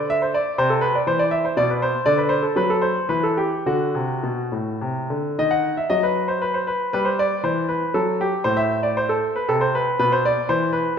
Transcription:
0.00 0.31 D3 medium
0.00 0.11 D5 medium
0.10 0.22 E5 medium
0.22 0.34 C5 medium
0.34 0.55 D5 medium
0.58 0.94 C3 medium
0.58 0.71 C5 medium
0.70 0.83 A4 medium
0.81 0.95 B4 medium
0.95 1.08 D5 medium
1.07 1.43 E3 medium
1.07 1.20 C5 medium
1.19 1.32 D5 medium
1.31 1.45 E5 medium
1.45 1.58 C5 medium
1.57 1.93 B2 medium
1.57 1.70 D5 medium
1.70 1.82 B4 medium
1.82 2.03 C5 medium
2.06 2.43 D3 medium
2.06 2.19 D5 medium
2.18 2.31 B4 medium
2.29 2.43 C5 medium
2.42 2.56 A4 medium
2.56 2.95 F#3 medium
2.56 2.70 B4 medium
2.70 2.84 A4 medium
2.82 3.06 C5 medium
3.09 3.50 E3 medium
3.09 3.24 B4 medium
3.23 3.38 A4 medium
3.37 3.67 G4 medium
3.66 3.94 D3 medium
3.66 4.81 F#4 medium
3.95 4.23 C3 medium
4.23 4.51 B2 medium
4.52 4.80 A2 soft
4.81 5.09 C3 medium
5.10 5.37 D3 soft
5.39 5.76 D#3 medium
5.39 5.52 D#5 medium
5.51 5.78 F#5 medium
5.77 5.91 E5 medium
5.90 6.65 F#3 medium
5.90 6.03 D#5 medium
6.03 6.29 B4 medium
6.28 6.42 C5 medium
6.42 6.55 B4 medium
6.54 6.68 C5 medium
6.67 6.92 B4 medium
6.93 7.31 G3 medium
6.93 7.07 B4 medium
7.05 7.19 C5 medium
7.19 7.41 D5 medium
7.44 7.81 E3 medium
7.44 7.66 C5 medium
7.69 7.95 B4 medium
7.94 8.31 F#3 medium
7.94 8.21 A4 medium
8.21 8.42 G4 medium
8.44 9.18 A2 medium
8.44 8.58 C5 medium
8.57 8.79 E5 medium
8.83 8.96 D5 medium
8.97 9.10 C5 medium
9.09 9.35 A4 medium
9.36 9.48 B4 medium
9.49 9.84 C3 medium
9.49 9.61 A4 medium
9.61 9.73 C5 medium
9.75 9.98 B4 medium
9.99 10.34 B2 medium
9.99 10.11 B4 medium
10.12 10.24 C5 medium
10.25 10.49 D5 medium
10.49 10.84 E3 medium
10.49 10.69 C5 medium
10.73 10.93 B4 medium

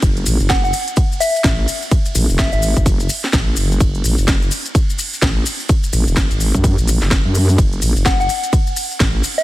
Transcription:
0.02 0.25 F#1 loud
0.02 kick loud
0.02 closed hi-hat medium
0.02 ride medium
0.02 maracas soft
0.17 closed hi-hat medium
0.26 0.38 A1 loud
0.26 open hi-hat loud
0.26 maracas loud
0.40 0.72 F#1 medium
0.40 maracas soft
0.50 0.59 F#5 medium
0.50 kick loud
0.50 snare loud
0.50 closed hi-hat medium
0.50 ride medium
0.50 maracas medium
0.64 0.70 F#5 medium
0.64 maracas soft
0.73 open hi-hat loud
0.73 maracas loud
0.88 closed hi-hat medium
0.88 maracas soft
0.97 kick loud
0.97 closed hi-hat medium
0.97 ride medium
0.97 maracas medium
1.12 maracas soft
1.20 1.58 E5 loud
1.20 open hi-hat loud
1.20 maracas medium
1.36 maracas soft
1.44 1.66 A1 medium
1.44 kick loud
1.44 snare loud
1.44 closed hi-hat medium
1.44 ride medium
1.44 maracas medium
1.68 open hi-hat loud
1.68 maracas medium
1.82 maracas soft
1.91 kick loud
1.91 closed hi-hat medium
1.91 ride medium
1.91 maracas medium
2.05 closed hi-hat medium
2.05 maracas soft
2.15 2.27 A1 loud
2.15 open hi-hat loud
2.15 maracas loud
2.29 2.37 E1 loud
2.29 maracas soft
2.39 2.51 F#1 loud
2.39 2.48 E5 medium
2.39 kick loud
2.39 snare loud
2.39 closed hi-hat medium
2.39 ride medium
2.39 maracas medium
2.52 2.74 G#1 loud
2.52 2.59 E5 medium
2.52 closed hi-hat soft
2.52 maracas soft
2.62 open hi-hat loud
2.62 maracas medium
2.77 3.08 F#1 loud
2.77 kick medium
2.77 closed hi-hat medium
2.77 maracas soft
2.86 kick loud
2.86 closed hi-hat medium
2.86 ride medium
2.86 maracas medium
3.00 closed hi-hat soft
3.00 maracas soft
3.09 open hi-hat loud
3.09 maracas loud
3.24 snare soft
3.24 maracas soft
3.33 3.55 A1 loud
3.33 kick loud
3.33 snare loud
3.33 closed hi-hat medium
3.33 ride medium
3.33 maracas medium
3.56 3.79 F#1 loud
3.56 open hi-hat loud
3.56 maracas medium
3.72 maracas soft
3.80 4.03 F#1 loud
3.80 kick loud
3.80 closed hi-hat medium
3.80 ride medium
3.80 maracas medium
3.95 closed hi-hat medium
4.04 4.16 A1 loud
4.04 open hi-hat loud
4.04 maracas loud
4.18 4.50 F#1 medium
4.18 maracas soft
4.28 kick loud
4.28 snare loud
4.28 closed hi-hat medium
4.28 ride medium
4.28 maracas medium
4.42 maracas soft
4.51 open hi-hat loud
4.51 maracas medium
4.66 closed hi-hat medium
4.66 maracas soft
4.75 kick loud
4.75 closed hi-hat medium
4.75 ride medium
4.75 maracas medium
4.90 maracas soft
4.99 open hi-hat loud
4.99 maracas medium
5.13 maracas soft
5.22 5.44 A1 loud
5.22 kick loud
5.22 snare loud
5.22 closed hi-hat medium
5.22 ride medium
5.22 maracas medium
5.46 open hi-hat loud
5.46 maracas medium
5.60 maracas soft
5.69 kick loud
5.69 closed hi-hat medium
5.69 ride medium
5.69 maracas medium
5.83 closed hi-hat medium
5.83 maracas soft
5.93 6.05 A1 loud
5.93 open hi-hat loud
5.93 maracas loud
6.07 6.15 E1 loud
6.07 maracas soft
6.17 6.29 F#1 loud
6.17 kick loud
6.17 snare loud
6.17 closed hi-hat medium
6.17 ride medium
6.17 maracas medium
6.31 6.52 G#1 loud
6.31 closed hi-hat soft
6.31 maracas soft
6.40 open hi-hat loud
6.40 maracas medium
6.55 6.76 F#2 medium
6.55 kick medium
6.55 closed hi-hat medium
6.55 maracas soft
6.64 kick loud
6.64 closed hi-hat medium
6.64 ride medium
6.64 maracas medium
6.78 6.99 A1 loud
6.78 closed hi-hat soft
6.78 maracas soft
6.88 open hi-hat loud
6.88 maracas loud
7.02 7.23 F#1 loud
7.02 snare soft
7.02 maracas soft
7.11 kick loud
7.11 snare loud
7.11 closed hi-hat medium
7.11 ride medium
7.11 maracas soft
7.25 7.57 F#2 medium
7.35 open hi-hat loud
7.35 maracas loud
7.49 maracas soft
7.58 7.81 F#1 loud
7.58 kick loud
7.58 closed hi-hat medium
7.58 ride medium
7.58 maracas medium
7.73 closed hi-hat medium
7.82 7.94 A1 medium
7.82 open hi-hat loud
7.82 maracas medium
7.96 8.28 F#1 loud
7.96 maracas soft
8.06 8.15 F#5 medium
8.06 kick loud
8.06 snare loud
8.06 closed hi-hat medium
8.06 ride medium
8.06 maracas medium
8.20 8.26 F#5 medium
8.20 maracas soft
8.29 open hi-hat medium
8.29 maracas medium
8.44 closed hi-hat medium
8.44 maracas soft
8.53 kick loud
8.53 closed hi-hat medium
8.53 ride medium
8.53 maracas medium
8.67 maracas soft
8.76 open hi-hat loud
8.76 maracas medium
8.91 maracas soft
9.00 9.22 A1 loud
9.00 kick loud
9.00 snare loud
9.00 closed hi-hat medium
9.00 ride medium
9.00 maracas soft
9.24 open hi-hat loud
9.24 maracas medium
9.38 9.43 E5 loud
9.38 maracas soft

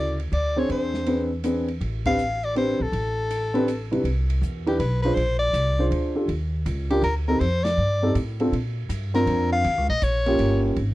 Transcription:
0.00 0.28 D2 medium
0.00 0.14 C#3 medium
0.00 0.14 E4 soft
0.00 0.14 F#4 medium
0.00 0.14 A4 medium
0.00 0.19 D5 medium
0.20 ride soft
0.32 0.67 D2 medium
0.32 0.60 D5 medium
0.32 ride medium
0.56 1.04 C4 medium
0.56 1.04 D4 medium
0.56 1.04 G#4 medium
0.56 1.04 C5 medium
0.56 0.70 C#5 medium
0.69 1.77 E2 medium
0.69 1.28 C5 medium
0.69 ride medium
0.94 snare soft
1.06 1.29 C4 medium
1.06 1.29 D4 medium
1.06 1.29 G#4 soft
1.06 1.29 B4 medium
1.06 ride medium
1.44 1.66 C4 medium
1.44 1.66 D4 soft
1.44 1.66 G#4 medium
1.44 1.66 B4 medium
1.44 hi-hat pedal medium
1.44 ride medium
1.68 ride soft
1.81 2.76 A1 medium
1.81 ride medium
2.05 2.17 C4 medium
2.05 2.17 D4 medium
2.05 2.18 G4 medium
2.05 2.18 B4 medium
2.05 2.46 F5 loud
2.05 kick medium
2.05 ride medium
2.18 hi-hat pedal medium
2.43 2.57 D5 medium
2.43 ride soft
2.56 2.78 C4 medium
2.56 2.78 D4 medium
2.56 2.78 G4 medium
2.56 2.78 B4 medium
2.56 2.84 C5 medium
2.56 ride medium
2.80 2.92 A#1 medium
2.80 3.93 A4 medium
2.92 4.01 A1 medium
2.92 ride medium
3.30 hi-hat pedal medium
3.30 ride medium
3.54 3.66 C4 medium
3.54 3.66 D4 medium
3.54 3.66 G4 medium
3.54 3.67 B4 medium
3.54 ride soft
3.68 hi-hat pedal medium
3.68 ride medium
3.91 4.04 C3 medium
3.91 4.03 D4 soft
3.91 4.04 E4 medium
3.91 4.04 G4 soft
3.91 4.04 B4 medium
3.91 ride soft
4.04 4.41 C2 medium
4.04 ride medium
4.30 ride medium
4.42 4.78 E2 medium
4.42 hi-hat pedal medium
4.66 4.78 D4 medium
4.66 4.78 E4 medium
4.66 4.79 G4 medium
4.66 4.79 B4 medium
4.66 ride soft
4.79 5.15 B1 medium
4.79 5.02 B4 medium
4.79 ride medium
5.02 5.16 D4 medium
5.02 5.16 F4 medium
5.02 5.16 G#4 medium
5.02 5.16 B4 medium
5.02 5.17 C5 medium
5.02 ride soft
5.14 5.53 A#1 medium
5.14 5.38 C5 medium
5.14 ride medium
5.39 5.87 D5 loud
5.53 5.90 C2 medium
5.53 hi-hat pedal medium
5.53 ride medium
5.79 6.14 D4 medium
5.79 6.14 F4 medium
5.79 6.14 G#4 medium
5.79 6.14 C5 medium
5.91 6.27 D2 medium
5.91 ride medium
6.15 6.27 D4 medium
6.15 6.27 F4 medium
6.15 6.28 G4 medium
6.15 6.28 A4 medium
6.28 6.65 D#2 medium
6.28 ride medium
6.66 7.02 C#2 medium
6.66 hi-hat pedal medium
6.66 ride medium
6.90 7.02 D4 medium
6.90 7.02 F4 medium
6.90 7.03 G4 medium
6.90 7.03 A#4 medium
6.90 ride soft
7.03 7.39 D2 medium
7.03 7.15 A#4 medium
7.03 ride medium
7.28 7.40 C4 medium
7.28 7.40 D#4 medium
7.28 7.40 G4 medium
7.28 7.40 A4 medium
7.28 7.41 A#4 medium
7.40 7.77 F2 medium
7.40 7.65 C5 medium
7.40 ride medium
7.64 8.15 D5 loud
7.64 snare medium
7.64 ride medium
7.78 8.14 G2 medium
8.02 8.14 C4 medium
8.02 8.14 D#4 medium
8.02 8.14 G4 medium
8.02 8.15 A4 medium
8.15 8.51 A2 medium
8.15 hi-hat pedal medium
8.15 ride medium
8.40 8.52 C4 medium
8.40 8.52 D4 medium
8.40 8.52 F4 medium
8.40 8.52 A4 medium
8.40 ride soft
8.52 8.88 A#2 medium
8.52 ride medium
8.89 9.26 G2 medium
8.89 hi-hat pedal medium
8.89 ride medium
9.14 9.62 C4 medium
9.14 9.62 D4 medium
9.14 9.62 F4 medium
9.14 9.62 A#4 medium
9.14 9.49 A#4 medium
9.14 snare soft
9.14 ride soft
9.26 9.63 F2 medium
9.26 ride medium
9.52 9.87 F5 loud
9.64 9.77 D#2 medium
9.64 ride medium
9.77 9.88 C#2 medium
9.89 10.01 A#1 medium
9.89 10.05 D#5 medium
10.02 10.38 A#1 medium
10.02 10.64 C#5 medium
10.02 hi-hat pedal medium
10.02 ride medium
10.26 10.74 A#3 medium
10.26 10.74 C#4 medium
10.26 10.74 F4 medium
10.26 10.75 G4 medium
10.26 ride soft
10.39 10.76 G1 medium
10.39 ride medium
10.76 10.94 G#1 medium
10.76 ride medium

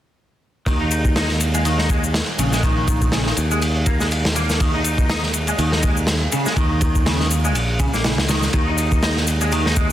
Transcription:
0.66 2.20 D#2 medium
0.66 0.79 D#3 medium
0.66 kick medium
0.66 ride medium
0.66 shaker soft
0.81 1.15 D#4 medium
0.91 ride medium
0.91 shaker medium
1.05 kick medium
1.05 shaker soft
1.16 1.28 D#4 medium
1.16 snare loud
1.16 ride medium
1.16 shaker soft
1.29 snare soft
1.41 ride medium
1.41 shaker medium
1.54 1.64 G#3 medium
1.54 ride soft
1.54 shaker soft
1.65 1.78 D#3 medium
1.65 ride medium
1.65 shaker soft
1.78 1.89 D#4 medium
1.78 snare soft
1.89 2.03 G#3 medium
1.89 kick medium
1.89 ride medium
1.89 shaker medium
2.04 shaker soft
2.14 snare loud
2.14 ride medium
2.14 shaker soft
2.39 3.31 A#1 medium
2.39 2.51 C#3 medium
2.39 ride medium
2.39 shaker medium
2.52 2.63 G#3 medium
2.52 snare soft
2.52 shaker soft
2.63 3.12 D#3 medium
2.63 kick loud
2.63 ride medium
2.63 shaker soft
2.88 kick medium
2.88 ride medium
2.88 shaker medium
3.02 kick medium
3.02 shaker soft
3.12 3.25 C#3 medium
3.12 snare loud
3.12 ride medium
3.12 shaker soft
3.27 3.32 D#3 medium
3.27 snare soft
3.37 5.53 D#2 medium
3.37 ride medium
3.37 shaker medium
3.51 3.61 G#3 medium
3.51 shaker soft
3.62 ride medium
3.62 shaker soft
3.86 3.99 A#3 medium
3.86 kick medium
3.86 ride medium
3.86 shaker medium
4.00 4.06 G#3 medium
4.00 snare soft
4.00 shaker soft
4.11 ride medium
4.11 shaker soft
4.25 snare loud
4.36 4.59 A#3 medium
4.36 ride medium
4.36 shaker medium
4.49 snare soft
4.49 shaker soft
4.60 4.73 D#3 medium
4.60 kick loud
4.60 ride medium
4.60 shaker soft
4.74 5.09 D#4 medium
4.84 ride medium
4.84 shaker medium
4.98 kick medium
4.98 shaker soft
5.09 5.22 D#4 medium
5.09 snare loud
5.09 ride medium
5.09 shaker soft
5.23 snare soft
5.33 ride medium
5.33 shaker medium
5.47 5.58 G#3 medium
5.47 ride soft
5.47 shaker soft
5.58 6.26 D#2 medium
5.58 5.71 D#3 loud
5.58 ride medium
5.58 shaker soft
5.72 5.82 D#4 medium
5.72 snare soft
5.83 5.96 G#3 medium
5.83 kick medium
5.83 ride medium
5.83 shaker medium
5.97 shaker soft
6.07 snare loud
6.07 ride medium
6.07 shaker soft
6.32 6.45 C#3 medium
6.32 ride medium
6.32 shaker medium
6.46 6.56 G#3 medium
6.46 snare soft
6.46 shaker soft
6.57 7.55 D#2 medium
6.57 7.05 D#3 medium
6.57 kick loud
6.57 ride medium
6.57 shaker soft
6.81 kick medium
6.81 ride medium
6.81 shaker medium
6.95 kick medium
6.95 shaker soft
7.06 7.18 C#3 medium
7.06 snare loud
7.06 ride medium
7.06 shaker soft
7.20 7.26 D#3 medium
7.20 snare soft
7.31 ride medium
7.31 shaker medium
7.44 7.54 G#3 medium
7.44 shaker soft
7.55 8.18 A#1 medium
7.55 ride medium
7.55 shaker soft
7.80 7.87 C#3 medium
7.80 kick medium
7.80 ride medium
7.80 shaker medium
7.93 8.03 A#3 medium
7.93 snare soft
7.93 shaker soft
8.04 8.17 C#3 medium
8.04 snare loud
8.04 ride medium
8.04 shaker soft
8.18 8.48 C#2 medium
8.18 snare loud
8.29 8.41 D#3 medium
8.29 snare loud
8.29 ride medium
8.29 shaker medium
8.42 snare soft
8.42 shaker soft
8.53 9.92 D#2 medium
8.53 8.66 D#3 medium
8.53 kick loud
8.53 ride medium
8.53 shaker soft
8.67 9.01 D#4 medium
8.78 ride medium
8.78 shaker medium
8.92 kick medium
8.92 shaker soft
9.03 9.15 D#4 medium
9.03 snare loud
9.03 ride medium
9.03 shaker soft
9.17 snare soft
9.27 ride medium
9.27 shaker medium
9.41 9.51 G#3 medium
9.41 ride soft
9.41 shaker soft
9.52 9.64 D#3 medium
9.52 ride medium
9.52 shaker soft
9.66 9.76 D#4 medium
9.66 snare soft
9.76 9.90 G#3 medium
9.76 kick medium
9.76 ride medium
9.76 shaker medium

